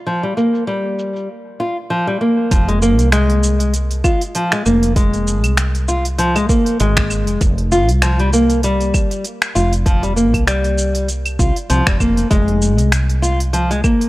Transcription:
0.07 nylon-string guitar F3, shaker
0.23 nylon-string guitar G3
0.37 nylon-string guitar A#3, shaker
0.55 shaker
0.67 nylon-string guitar G3, shaker
0.99 shaker
1.16 shaker
1.60 nylon-string guitar F4
1.90 nylon-string guitar F3
2.07 nylon-string guitar G3
2.21 nylon-string guitar A#3
2.51 fretless electric bass F1, nylon-string guitar F3, kick, open hi-hat, shaker
2.68 nylon-string guitar G#3, open hi-hat
2.82 nylon-string guitar A#3, shaker
2.99 fretless electric bass C2, open hi-hat, shaker
3.12 nylon-string guitar G#3, finger snap, open hi-hat, shaker
3.30 open hi-hat
3.43 shaker
3.60 open hi-hat, shaker
3.74 open hi-hat, shaker
3.91 open hi-hat, shaker
4.04 nylon-string guitar F4, kick, claves, shaker
4.21 open hi-hat, shaker
4.35 nylon-string guitar F3, open hi-hat, shaker
4.52 nylon-string guitar G#3, finger snap, shaker
4.66 fretless electric bass F1, nylon-string guitar A#3, shaker
4.83 open hi-hat, shaker
4.96 nylon-string guitar G#3, kick, open hi-hat, shaker
5.13 open hi-hat, shaker
5.27 shaker
5.44 fretless electric bass C2, open hi-hat, claves, shaker
5.57 finger snap, open hi-hat, shaker
5.75 open hi-hat, shaker
5.88 nylon-string guitar F4, shaker
6.05 open hi-hat, shaker
6.18 nylon-string guitar F3, open hi-hat, shaker
6.36 nylon-string guitar G#3, open hi-hat, claves, shaker
6.49 nylon-string guitar A#3, kick, shaker
6.66 open hi-hat, shaker
6.80 fretless electric bass G#1, nylon-string guitar G#3, open hi-hat, shaker
6.97 finger snap, kick, shaker
7.10 claves, shaker
7.27 fretless electric bass F1, open hi-hat, shaker
7.41 fretless electric bass F1, kick, open hi-hat, shaker
7.58 open hi-hat
7.72 nylon-string guitar F4, shaker
7.89 fretless electric bass C2, open hi-hat, shaker
8.02 nylon-string guitar F3, finger snap, open hi-hat, shaker
8.19 nylon-string guitar G3, open hi-hat
8.33 nylon-string guitar A#3, shaker
8.50 open hi-hat, shaker
8.63 nylon-string guitar G3, open hi-hat, shaker
8.80 open hi-hat, shaker
8.94 kick, claves, shaker
9.11 open hi-hat, shaker
9.24 open hi-hat, shaker
9.42 finger snap, shaker
9.55 fretless electric bass F1, nylon-string guitar F4, shaker
9.73 open hi-hat, shaker
9.86 nylon-string guitar F3, kick, open hi-hat, shaker
10.03 nylon-string guitar G3, open hi-hat, shaker
10.16 nylon-string guitar A#3, shaker
10.34 fretless electric bass C2, kick, open hi-hat, claves, shaker
10.47 nylon-string guitar G3, finger snap, open hi-hat, shaker
10.64 open hi-hat, shaker
10.78 shaker
10.95 open hi-hat, shaker
11.08 open hi-hat, shaker
11.26 open hi-hat, claves, shaker
11.39 fretless electric bass C2, nylon-string guitar F4, kick, shaker
11.56 open hi-hat, shaker
11.70 fretless electric bass C2, nylon-string guitar F3, open hi-hat, shaker
11.87 fretless electric bass F1, nylon-string guitar G3, finger snap, kick, shaker
12.00 nylon-string guitar A#3, kick, claves, shaker
12.17 open hi-hat, shaker
12.31 fretless electric bass F1, nylon-string guitar G#3, kick, open hi-hat, shaker
12.48 open hi-hat
12.62 shaker
12.78 fretless electric bass C2, open hi-hat, shaker
12.92 finger snap, open hi-hat, shaker
13.10 open hi-hat
13.22 nylon-string guitar F4, shaker
13.40 open hi-hat, shaker
13.53 nylon-string guitar F3, open hi-hat, shaker
13.71 nylon-string guitar G#3, open hi-hat, shaker
13.84 nylon-string guitar A#3, kick, claves, shaker
14.01 open hi-hat, shaker

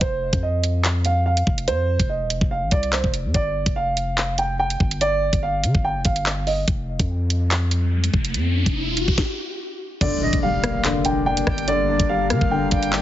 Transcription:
0.01 808-style bass F1, grand piano C5, kick, closed hi-hat
0.33 808-style bass F2, kick, closed hi-hat
0.43 grand piano D#5
0.64 closed hi-hat
0.84 clap, closed hi-hat
1.05 grand piano F5, closed hi-hat
1.26 grand piano F5
1.37 closed hi-hat
1.47 808-style bass F1, kick
1.58 closed hi-hat
1.68 808-style bass F2, grand piano C5, closed hi-hat
2.00 808-style bass F1, kick, closed hi-hat
2.09 grand piano D#5
2.20 808-style bass D#1
2.30 808-style bass F1, closed hi-hat
2.41 808-style bass F1, kick
2.51 grand piano F5
2.62 808-style bass A1
2.71 808-style bass C2, grand piano D5, kick, closed hi-hat
2.83 closed hi-hat
2.93 grand piano C5, clap, closed hi-hat
3.04 808-style bass F1, kick
3.14 closed hi-hat
3.25 808-style bass F2
3.34 808-style bass G1, grand piano D5, kick, closed hi-hat
3.66 808-style bass F1, kick, closed hi-hat
3.76 grand piano F5
3.97 closed hi-hat
4.18 clap, closed hi-hat
4.38 grand piano G5, closed hi-hat
4.59 grand piano G5
4.70 closed hi-hat
4.80 808-style bass G1, kick
4.91 closed hi-hat
5.01 grand piano D5, closed hi-hat
5.33 808-style bass G1, kick, closed hi-hat
5.43 grand piano F5
5.64 808-style bass D3, closed hi-hat
5.75 808-style bass G1, kick
5.84 grand piano G5
5.95 808-style bass F1
6.05 808-style bass G1, grand piano F5, kick, closed hi-hat
6.16 closed hi-hat
6.26 clap
6.47 grand piano D#5, open hi-hat
6.68 808-style bass F1, kick, closed hi-hat, riser
7.00 808-style bass F2, kick, closed hi-hat
7.30 closed hi-hat
7.51 clap, closed hi-hat
7.71 closed hi-hat
8.04 closed hi-hat
8.14 808-style bass F1, kick
8.25 closed hi-hat
8.34 808-style bass F2, closed hi-hat
8.66 808-style bass F1, kick, closed hi-hat
8.87 808-style bass D#1
8.97 808-style bass F1, closed hi-hat
9.08 808-style bass F1, kick
9.18 kick, snare
10.01 808-style bass G1, grand piano D3 D5, ambient pad G3 A#3 D4 A#4, kick, closed hi-hat, crash, impact
10.21 grand piano D4, flute D#5
10.33 808-style bass F1, kick, closed hi-hat
10.43 grand piano G3 F5, flute F5
10.63 grand piano A#3, cross-stick, closed hi-hat
10.85 grand piano D3, clap, closed hi-hat
11.05 grand piano D4 G5, closed hi-hat
11.26 grand piano D4 G5
11.37 closed hi-hat
11.47 808-style bass G1, grand piano D5, flute G5, kick, cross-stick
11.58 closed hi-hat
11.68 grand piano D3 D5, closed hi-hat
11.88 grand piano D4, flute D5
12.00 808-style bass G1, kick, closed hi-hat
12.09 grand piano G3 F5
12.30 808-style bass D3, grand piano A#3, flute F5, cross-stick, closed hi-hat
12.41 808-style bass G1, kick
12.51 grand piano D3 G5
12.62 808-style bass F1
12.71 808-style bass G1, grand piano D4 F5, flute G5, kick, closed hi-hat
12.83 closed hi-hat
12.92 grand piano D4, clap

